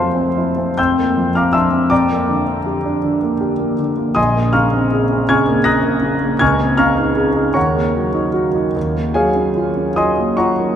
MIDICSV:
0, 0, Header, 1, 2, 480
1, 0, Start_track
1, 0, Tempo, 828729
1, 674, Tempo, 749064
1, 1151, Time_signature, 6, 3, 24, 8
1, 3554, Tempo, 763359
1, 4994, Tempo, 816327
1, 6647, End_track
2, 0, Start_track
2, 0, Title_t, "Grand piano"
2, 0, Program_c, 0, 0
2, 0, Control_c, 0, 64, 127
2, 0, Note_on_c, 0, 41, 39
2, 0, Note_on_c, 0, 53, 32
2, 0, Note_on_c, 0, 57, 30
2, 0, Note_on_c, 0, 72, 45
2, 0, Note_on_c, 0, 77, 41
2, 0, Note_on_c, 0, 81, 44
2, 0, Note_on_c, 0, 84, 58
2, 86, Note_on_c, 0, 60, 31
2, 157, Note_off_c, 0, 53, 0
2, 218, Note_on_c, 0, 64, 31
2, 286, Note_off_c, 0, 60, 0
2, 337, Note_on_c, 0, 60, 33
2, 410, Note_off_c, 0, 64, 0
2, 427, Note_off_c, 0, 81, 0
2, 429, Note_off_c, 0, 72, 0
2, 430, Note_off_c, 0, 77, 0
2, 432, Note_off_c, 0, 41, 0
2, 448, Note_off_c, 0, 84, 0
2, 449, Note_on_c, 0, 91, 61
2, 454, Note_off_c, 0, 60, 0
2, 455, Note_on_c, 0, 79, 50
2, 456, Note_on_c, 0, 88, 47
2, 457, Note_on_c, 0, 41, 40
2, 457, Note_on_c, 0, 84, 49
2, 461, Control_c, 0, 64, 0
2, 465, Note_off_c, 0, 57, 0
2, 559, Control_c, 0, 64, 127
2, 568, Note_on_c, 0, 58, 31
2, 678, Note_on_c, 0, 53, 30
2, 748, Note_off_c, 0, 58, 0
2, 771, Note_off_c, 0, 79, 0
2, 771, Note_off_c, 0, 88, 0
2, 772, Note_off_c, 0, 84, 0
2, 793, Note_off_c, 0, 91, 0
2, 795, Note_on_c, 0, 89, 57
2, 798, Note_on_c, 0, 60, 33
2, 804, Note_on_c, 0, 77, 42
2, 804, Note_on_c, 0, 86, 44
2, 805, Note_on_c, 0, 82, 44
2, 867, Note_off_c, 0, 53, 0
2, 907, Note_on_c, 0, 88, 60
2, 910, Note_off_c, 0, 77, 0
2, 910, Note_off_c, 0, 82, 0
2, 910, Note_off_c, 0, 86, 0
2, 913, Note_off_c, 0, 89, 0
2, 913, Note_on_c, 0, 76, 46
2, 915, Note_on_c, 0, 81, 46
2, 916, Note_on_c, 0, 84, 46
2, 919, Note_on_c, 0, 62, 34
2, 986, Note_off_c, 0, 60, 0
2, 1032, Note_on_c, 0, 60, 32
2, 1106, Note_off_c, 0, 62, 0
2, 1133, Note_off_c, 0, 41, 0
2, 1134, Note_off_c, 0, 76, 0
2, 1136, Note_off_c, 0, 81, 0
2, 1136, Note_off_c, 0, 84, 0
2, 1144, Note_on_c, 0, 86, 65
2, 1148, Note_off_c, 0, 88, 0
2, 1151, Note_on_c, 0, 79, 46
2, 1152, Note_off_c, 0, 60, 0
2, 1153, Note_on_c, 0, 74, 45
2, 1153, Note_on_c, 0, 82, 45
2, 1155, Note_on_c, 0, 41, 43
2, 1162, Control_c, 0, 64, 0
2, 1249, Control_c, 0, 64, 127
2, 1283, Note_on_c, 0, 58, 34
2, 1395, Note_on_c, 0, 50, 34
2, 1470, Note_off_c, 0, 58, 0
2, 1513, Note_on_c, 0, 62, 33
2, 1587, Note_off_c, 0, 50, 0
2, 1634, Note_on_c, 0, 67, 35
2, 1707, Note_off_c, 0, 62, 0
2, 1758, Note_on_c, 0, 62, 35
2, 1828, Note_off_c, 0, 67, 0
2, 1877, Note_on_c, 0, 50, 35
2, 1950, Note_off_c, 0, 62, 0
2, 1993, Note_on_c, 0, 58, 36
2, 2068, Note_off_c, 0, 50, 0
2, 2112, Note_on_c, 0, 67, 36
2, 2185, Note_off_c, 0, 58, 0
2, 2228, Note_on_c, 0, 58, 31
2, 2305, Note_off_c, 0, 67, 0
2, 2330, Note_off_c, 0, 79, 0
2, 2331, Note_off_c, 0, 74, 0
2, 2331, Note_off_c, 0, 82, 0
2, 2352, Note_off_c, 0, 86, 0
2, 2355, Note_on_c, 0, 50, 35
2, 2425, Note_off_c, 0, 58, 0
2, 2475, Note_on_c, 0, 58, 34
2, 2552, Note_off_c, 0, 50, 0
2, 2578, Note_off_c, 0, 41, 0
2, 2585, Note_on_c, 0, 87, 68
2, 2592, Note_on_c, 0, 80, 55
2, 2593, Note_on_c, 0, 75, 52
2, 2595, Note_on_c, 0, 34, 44
2, 2595, Note_on_c, 0, 84, 57
2, 2600, Note_off_c, 0, 58, 0
2, 2613, Control_c, 0, 64, 0
2, 2714, Control_c, 0, 64, 127
2, 2719, Note_on_c, 0, 58, 34
2, 2825, Note_off_c, 0, 80, 0
2, 2826, Note_off_c, 0, 75, 0
2, 2827, Note_off_c, 0, 84, 0
2, 2829, Note_on_c, 0, 89, 61
2, 2833, Note_on_c, 0, 85, 42
2, 2834, Note_on_c, 0, 77, 44
2, 2835, Note_on_c, 0, 82, 45
2, 2839, Note_off_c, 0, 87, 0
2, 2840, Note_on_c, 0, 49, 36
2, 2917, Note_off_c, 0, 58, 0
2, 2963, Note_on_c, 0, 60, 36
2, 3036, Note_off_c, 0, 49, 0
2, 3083, Note_on_c, 0, 68, 36
2, 3155, Note_off_c, 0, 60, 0
2, 3208, Note_on_c, 0, 60, 36
2, 3273, Note_off_c, 0, 68, 0
2, 3289, Note_off_c, 0, 77, 0
2, 3289, Note_off_c, 0, 85, 0
2, 3290, Note_off_c, 0, 82, 0
2, 3312, Note_off_c, 0, 89, 0
2, 3317, Note_on_c, 0, 92, 71
2, 3322, Note_on_c, 0, 80, 54
2, 3323, Note_on_c, 0, 85, 54
2, 3323, Note_on_c, 0, 89, 49
2, 3325, Note_on_c, 0, 49, 37
2, 3393, Note_off_c, 0, 60, 0
2, 3441, Note_on_c, 0, 58, 36
2, 3509, Note_off_c, 0, 49, 0
2, 3538, Note_off_c, 0, 80, 0
2, 3538, Note_off_c, 0, 85, 0
2, 3539, Note_off_c, 0, 89, 0
2, 3543, Note_on_c, 0, 94, 69
2, 3549, Note_on_c, 0, 87, 54
2, 3550, Note_on_c, 0, 68, 34
2, 3550, Note_on_c, 0, 90, 54
2, 3552, Note_off_c, 0, 92, 0
2, 3552, Note_on_c, 0, 82, 51
2, 3625, Note_off_c, 0, 58, 0
2, 3672, Note_on_c, 0, 58, 33
2, 3738, Note_off_c, 0, 68, 0
2, 3783, Note_on_c, 0, 49, 36
2, 3861, Note_off_c, 0, 58, 0
2, 3904, Note_on_c, 0, 58, 37
2, 3978, Note_off_c, 0, 49, 0
2, 4001, Note_off_c, 0, 34, 0
2, 4002, Note_off_c, 0, 87, 0
2, 4002, Note_off_c, 0, 90, 0
2, 4003, Note_off_c, 0, 82, 0
2, 4017, Note_on_c, 0, 92, 71
2, 4024, Note_off_c, 0, 94, 0
2, 4024, Note_on_c, 0, 80, 55
2, 4026, Note_on_c, 0, 89, 53
2, 4028, Note_off_c, 0, 58, 0
2, 4028, Note_on_c, 0, 85, 54
2, 4030, Note_on_c, 0, 37, 47
2, 4039, Control_c, 0, 64, 0
2, 4127, Control_c, 0, 64, 127
2, 4152, Note_on_c, 0, 60, 33
2, 4247, Note_off_c, 0, 89, 0
2, 4252, Note_off_c, 0, 80, 0
2, 4254, Note_off_c, 0, 85, 0
2, 4256, Note_on_c, 0, 89, 71
2, 4262, Note_on_c, 0, 82, 52
2, 4264, Note_on_c, 0, 77, 51
2, 4264, Note_on_c, 0, 85, 52
2, 4265, Note_off_c, 0, 92, 0
2, 4266, Note_on_c, 0, 49, 38
2, 4344, Note_off_c, 0, 60, 0
2, 4387, Note_on_c, 0, 63, 34
2, 4460, Note_off_c, 0, 49, 0
2, 4504, Note_on_c, 0, 68, 33
2, 4579, Note_off_c, 0, 63, 0
2, 4624, Note_on_c, 0, 63, 36
2, 4698, Note_off_c, 0, 68, 0
2, 4719, Note_off_c, 0, 82, 0
2, 4720, Note_off_c, 0, 77, 0
2, 4720, Note_off_c, 0, 85, 0
2, 4727, Note_off_c, 0, 37, 0
2, 4736, Note_on_c, 0, 85, 61
2, 4741, Note_off_c, 0, 89, 0
2, 4741, Note_on_c, 0, 73, 45
2, 4741, Note_on_c, 0, 82, 44
2, 4745, Note_on_c, 0, 39, 44
2, 4746, Note_on_c, 0, 78, 45
2, 4747, Note_off_c, 0, 63, 0
2, 4759, Control_c, 0, 64, 0
2, 4870, Note_on_c, 0, 58, 35
2, 4879, Control_c, 0, 64, 127
2, 4996, Note_on_c, 0, 54, 33
2, 5065, Note_off_c, 0, 58, 0
2, 5109, Note_on_c, 0, 63, 33
2, 5184, Note_off_c, 0, 54, 0
2, 5223, Note_on_c, 0, 66, 34
2, 5302, Note_off_c, 0, 63, 0
2, 5348, Note_on_c, 0, 63, 35
2, 5419, Note_off_c, 0, 66, 0
2, 5444, Note_off_c, 0, 73, 0
2, 5444, Note_off_c, 0, 82, 0
2, 5447, Note_off_c, 0, 78, 0
2, 5448, Note_off_c, 0, 39, 0
2, 5465, Note_off_c, 0, 85, 0
2, 5470, Note_off_c, 0, 63, 0
2, 5473, Note_on_c, 0, 39, 43
2, 5481, Control_c, 0, 64, 0
2, 5583, Control_c, 0, 64, 127
2, 5589, Note_on_c, 0, 58, 33
2, 5696, Note_on_c, 0, 80, 61
2, 5701, Note_on_c, 0, 68, 50
2, 5703, Note_on_c, 0, 73, 49
2, 5705, Note_on_c, 0, 77, 48
2, 5708, Note_on_c, 0, 54, 34
2, 5782, Note_off_c, 0, 58, 0
2, 5825, Note_on_c, 0, 61, 30
2, 5901, Note_off_c, 0, 54, 0
2, 5943, Note_on_c, 0, 65, 34
2, 6019, Note_off_c, 0, 61, 0
2, 6062, Note_on_c, 0, 61, 32
2, 6137, Note_off_c, 0, 65, 0
2, 6160, Note_off_c, 0, 68, 0
2, 6161, Note_off_c, 0, 73, 0
2, 6162, Note_off_c, 0, 77, 0
2, 6178, Note_off_c, 0, 80, 0
2, 6179, Note_on_c, 0, 87, 63
2, 6183, Note_on_c, 0, 75, 49
2, 6185, Note_on_c, 0, 84, 46
2, 6186, Note_on_c, 0, 54, 32
2, 6187, Note_on_c, 0, 80, 50
2, 6257, Note_off_c, 0, 61, 0
2, 6307, Note_on_c, 0, 58, 31
2, 6381, Note_off_c, 0, 54, 0
2, 6411, Note_off_c, 0, 75, 0
2, 6412, Note_off_c, 0, 84, 0
2, 6413, Note_off_c, 0, 80, 0
2, 6417, Note_on_c, 0, 85, 58
2, 6422, Note_on_c, 0, 78, 46
2, 6423, Note_on_c, 0, 73, 44
2, 6425, Note_on_c, 0, 82, 41
2, 6426, Note_off_c, 0, 87, 0
2, 6426, Note_on_c, 0, 65, 30
2, 6503, Note_off_c, 0, 58, 0
2, 6549, Note_on_c, 0, 58, 27
2, 6624, Note_off_c, 0, 65, 0
2, 6647, Note_off_c, 0, 39, 0
2, 6647, Note_off_c, 0, 58, 0
2, 6647, Note_off_c, 0, 73, 0
2, 6647, Note_off_c, 0, 78, 0
2, 6647, Note_off_c, 0, 82, 0
2, 6647, Note_off_c, 0, 85, 0
2, 6647, End_track
0, 0, End_of_file